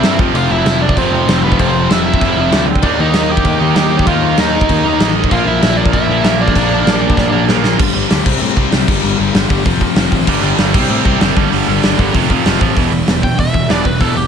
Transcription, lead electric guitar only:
0.00 0.16 E4 medium
0.00 0.16 E5 loud
0.36 0.50 F4 medium
0.36 0.51 F5 loud
0.51 0.80 E4 medium
0.51 0.83 E5 medium
0.81 0.96 D4 medium
0.81 0.98 D5 medium
0.98 1.41 C4 medium
0.98 1.43 C5 medium
1.44 1.58 B3 medium
1.44 1.59 B4 medium
1.59 1.87 C4 medium
1.59 1.91 C5 medium
1.91 2.05 E4 medium
1.91 2.05 E5 medium
2.06 2.64 E4 medium
2.06 2.64 E5 loud
2.83 2.98 D4 medium
2.83 3.01 D5 medium
3.00 3.28 D#4 medium
3.00 3.31 D#5 medium
3.31 3.74 G4 medium
3.31 3.74 G5 loud
3.75 4.05 G4 medium
3.75 4.07 G5 loud
4.07 4.36 F4 medium
4.07 4.39 F5 medium
4.40 5.12 D#4 medium
4.40 5.12 D#5 medium
5.31 5.46 F4 medium
5.31 5.47 F5 medium
5.47 5.76 E4 medium
5.47 5.79 E5 medium
5.77 5.83 D4 medium
5.77 5.82 D5 loud
5.93 6.36 E4 medium
5.93 6.41 E5 loud
6.41 7.45 D4 medium
6.41 7.45 D5 medium
13.24 13.39 G5 medium
13.40 13.69 E5 loud
13.71 13.86 D5 medium
13.86 14.01 B4 medium
14.01 14.16 A4 medium
14.17 14.27 G4 medium

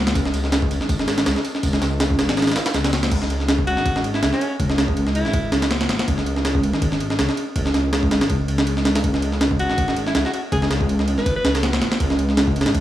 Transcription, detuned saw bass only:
0.00 0.14 C#2 medium
0.15 0.79 C#2 loud
0.81 1.07 G#1 loud
1.08 1.25 G#1 medium
1.26 1.35 C#2 medium
1.63 2.27 C#2 loud
2.29 2.55 G#1 loud
2.74 3.10 C#2 medium
3.12 3.76 C#2 loud
3.77 4.03 G#1 medium
4.04 4.21 G#1 medium
4.23 4.32 C#2 medium
4.60 5.24 C#2 loud
5.25 5.51 G#1 loud
5.52 5.88 C#2 loud
5.89 5.98 G#1 medium
6.08 6.72 C#2 loud
6.73 6.99 G#1 loud
7.00 7.17 G#1 medium
7.19 7.28 C#2 medium
7.56 8.20 C#2 loud
8.21 8.29 G#1 loud
8.30 9.03 C#2 loud
9.04 9.68 C#2 loud
9.70 9.95 G#1 loud
9.97 10.14 G#1 medium
10.15 10.24 C#2 medium
10.52 11.16 C#2 loud
11.18 11.44 G#1 loud
11.45 11.80 C#2 loud
11.82 11.91 G#1 medium
12.00 12.64 C#2 loud
12.66 12.80 G#1 loud

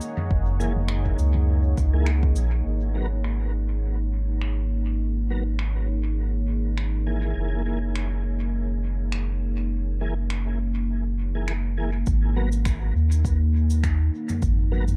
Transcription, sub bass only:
0.31 1.16 F#1 loud
1.19 1.75 C#2 medium
1.77 2.35 C#2 medium
2.36 2.62 A#1 medium
2.66 7.34 G#1 medium
7.36 12.04 F#1 medium
12.07 12.93 G#1 loud
12.95 14.10 D#2 medium
14.42 14.97 G#1 loud

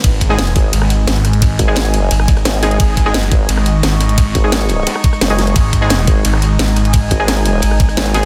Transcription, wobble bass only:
0.56 0.72 G#1 loud
1.59 2.10 G#1 loud
2.45 2.79 G#1 loud
3.32 3.47 G#1 loud
4.35 4.85 G#1 loud
5.21 5.54 F#1 loud
6.08 6.23 G#1 loud
7.11 7.61 G#1 loud
7.97 8.25 G#1 loud

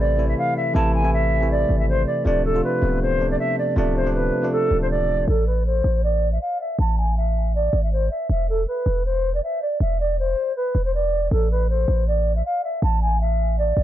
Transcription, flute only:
0.00 0.27 D5 medium
0.28 0.36 E5 medium
0.38 0.54 F5 medium
0.56 0.72 E5 medium
0.75 0.91 A5 medium
0.94 1.10 G#5 medium
1.13 1.48 E5 medium
1.50 1.77 D5 medium
1.79 1.87 E5 medium
1.89 2.05 C5 loud
2.06 2.23 D5 medium
2.26 2.42 D5 medium
2.44 2.61 A4 medium
2.63 2.99 B4 medium
3.01 3.29 C5 loud
3.30 3.38 D5 medium
3.39 3.55 E5 medium
3.58 3.74 D5 medium
3.77 3.93 D5 medium
3.96 4.12 C5 medium
4.14 4.50 B4 medium
4.52 4.79 A4 medium
4.81 4.89 C5 medium
4.90 5.26 D5 medium
5.28 5.44 A4 medium
5.46 5.63 B4 medium
5.65 6.01 C5 medium
6.03 6.30 D5 medium
6.32 6.40 E5 medium
6.41 6.57 F5 medium
6.60 6.76 E5 medium
6.79 6.95 A5 medium
6.97 7.14 G#5 medium
7.17 7.52 E5 medium
7.55 7.82 D5 medium
7.83 7.91 E5 medium
7.92 8.08 C5 medium
8.10 8.27 E5 medium
8.30 8.46 E5 medium
8.49 8.65 A4 medium
8.67 9.03 B4 medium
9.05 9.32 C5 medium
9.34 9.42 D5 medium
9.43 9.59 E5 medium
9.62 9.78 D5 medium
9.81 9.97 E5 medium
9.99 10.16 D5 medium
10.19 10.54 C5 medium
10.56 10.83 B4 medium
10.84 10.92 C5 medium
10.94 11.29 D5 medium
11.31 11.48 A4 medium
11.51 11.67 B4 medium
11.69 12.05 C5 medium
12.07 12.34 D5 medium
12.35 12.43 E5 medium
12.45 12.61 F5 medium
12.63 12.80 E5 medium
12.82 12.99 A5 medium
13.01 13.18 G#5 medium
13.20 13.56 E5 medium
13.58 13.83 D5 medium

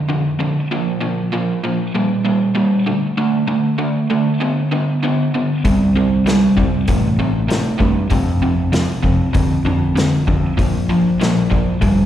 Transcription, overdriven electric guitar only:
0.09 0.37 F2 medium
0.09 0.38 D3 medium
0.39 0.68 F2 medium
0.39 0.68 D3 medium
0.71 0.99 A#2 medium
0.71 1.00 F3 loud
1.01 1.29 A#2 medium
1.01 1.30 F3 medium
1.33 1.61 A#2 medium
1.33 1.61 F3 medium
1.65 1.92 A#2 medium
1.65 1.92 F3 medium
1.95 2.23 A#2 medium
1.95 2.23 G3 medium
2.25 2.53 A#2 medium
2.25 2.53 G3 medium
2.55 2.83 A#2 medium
2.55 2.84 G3 medium
2.87 3.14 D3 medium
2.87 3.15 A3 medium
3.18 3.45 D3 medium
3.18 3.46 A3 medium
3.48 3.76 D3 medium
3.48 3.76 A3 medium
3.78 4.07 D3 medium
3.78 4.07 A3 medium
4.10 4.38 D3 medium
4.10 4.38 A3 medium
4.41 4.68 D3 medium
4.41 4.69 B3 medium
4.72 5.00 D3 medium
4.72 5.00 B3 medium
5.04 5.31 D3 medium
5.04 5.31 B3 medium
5.35 5.62 D3 medium
5.35 5.62 B3 medium
5.66 5.92 C3 medium
5.66 5.93 G3 medium
5.96 6.23 C3 medium
5.96 6.23 G3 medium
6.26 6.54 C3 medium
6.26 6.54 G3 medium
6.57 6.84 C3 medium
6.57 6.85 G3 medium
6.88 7.15 C3 medium
6.88 7.16 A3 medium
7.20 7.47 C3 medium
7.20 7.47 A3 medium
7.49 7.77 C3 medium
7.49 7.77 A3 medium
7.79 8.07 C3 medium
7.79 8.08 A3 medium
8.11 8.39 F2 medium
8.11 8.39 C3 medium
8.42 8.70 F2 medium
8.42 8.70 C3 medium
8.72 9.00 F2 medium
8.72 9.00 C3 medium
9.03 9.31 F2 medium
9.03 9.31 C3 medium
9.33 9.62 F2 medium
9.33 9.62 D3 medium
9.65 9.93 F2 medium
9.65 9.93 D3 medium
9.96 10.24 F2 medium
9.96 10.24 D3 medium
10.28 10.55 F2 medium
10.28 10.55 D3 medium
10.58 10.86 A#2 medium
10.58 10.86 F3 medium
10.89 11.17 A#2 medium
10.89 11.17 F3 medium
11.20 11.47 A#2 medium
11.20 11.48 F3 medium
11.50 11.78 A#2 medium
11.50 11.78 F3 medium
11.81 12.06 A#2 medium
11.81 12.06 G3 medium

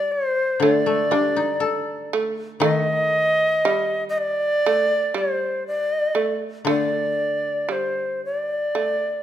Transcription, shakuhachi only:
0.00 0.13 D5 medium
0.12 0.65 C5 medium
0.63 0.74 C#5 medium
0.74 2.13 D5 medium
2.61 4.04 D#5 medium
4.09 4.20 D#5 medium
4.18 5.20 D5 medium
5.18 5.66 C5 medium
5.67 6.38 D5 medium
6.69 7.74 D5 medium
7.72 8.24 C5 medium
8.25 9.23 D5 medium

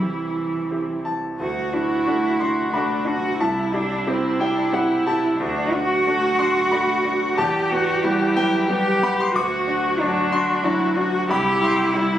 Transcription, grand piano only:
0.00 1.43 C2 soft
0.00 0.67 C4 soft
0.00 0.67 E4 soft
0.00 0.67 G4 soft
0.71 1.36 C4 soft
0.71 1.36 E4 soft
0.71 1.37 G4 soft
1.05 2.35 A5 medium
1.40 1.72 D2 soft
1.73 2.03 D4 soft
1.73 2.03 F#4 soft
2.07 2.37 A3 soft
2.07 2.37 D4 soft
2.07 2.37 F#4 soft
2.40 2.70 D4 soft
2.40 2.71 F#4 soft
2.40 2.71 C6 medium
2.73 3.03 A3 soft
2.73 3.04 D4 soft
2.73 3.04 F#4 medium
2.73 3.36 B5 medium
3.06 3.36 D4 soft
3.06 3.37 F#4 soft
3.40 3.72 C2 medium
3.40 4.37 A5 medium
3.74 4.04 E4 soft
3.74 4.04 G4 soft
4.07 4.37 C4 soft
4.07 4.37 E4 soft
4.07 4.37 G4 medium
4.40 4.70 E4 soft
4.40 4.71 G4 soft
4.40 4.71 G5 medium
4.73 5.03 C4 soft
4.73 5.03 E4 soft
4.73 5.03 G4 medium
4.73 5.04 F#5 medium
5.07 5.37 E4 soft
5.07 5.37 G4 medium
5.07 6.35 A5 medium
5.40 5.72 D2 medium
5.73 6.03 D4 soft
5.73 6.03 F#4 medium
6.07 6.36 A3 medium
6.07 6.36 D4 medium
6.07 6.37 F#4 medium
6.39 6.69 D4 soft
6.39 6.69 F#4 medium
6.39 6.70 C6 medium
6.71 7.01 A3 medium
6.71 7.02 D4 medium
6.71 7.02 F#4 medium
6.71 7.33 B5 medium
7.05 7.34 D4 medium
7.05 7.35 F#4 medium
7.38 7.70 E2 medium
7.38 8.32 A5 loud
7.72 8.01 B3 medium
7.72 8.01 F#4 medium
8.04 8.33 G3 medium
8.04 8.34 B3 medium
8.04 8.34 F#4 medium
8.36 8.66 F#3 medium
8.36 8.66 B3 medium
8.36 8.98 G5 loud
8.69 8.99 G3 medium
8.69 8.99 B3 medium
8.69 8.99 G4 medium
9.02 9.32 B3 medium
9.02 9.32 F#5 medium
9.02 9.18 B5 loud
9.20 9.35 C6 loud
9.35 9.67 D2 medium
9.35 10.29 D6 loud
9.67 9.97 D4 medium
9.67 9.97 F#4 medium
10.00 10.30 F#3 medium
10.00 10.30 D4 medium
10.00 10.30 F#4 medium
10.32 10.62 D4 medium
10.32 10.62 F#4 medium
10.32 11.26 C6 loud
10.64 10.94 F#3 medium
10.64 10.94 D4 medium
10.64 10.94 F#4 medium
10.97 11.26 D4 medium
10.97 11.27 F#4 medium
11.29 11.62 C2 medium
11.29 11.61 B5 loud
11.62 11.92 E4 medium
11.62 12.19 C6 loud
11.95 12.19 G3 medium
11.95 12.19 E4 medium

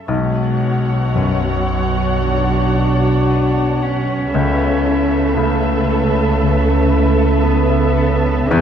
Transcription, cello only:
0.09 1.17 G#3 medium
1.16 2.24 F#3 soft
2.25 3.84 D4 medium
3.82 5.38 C#4 medium
5.36 6.40 A3 medium
6.41 7.44 A3 medium
7.42 8.51 B3 medium
8.49 8.61 E4 medium

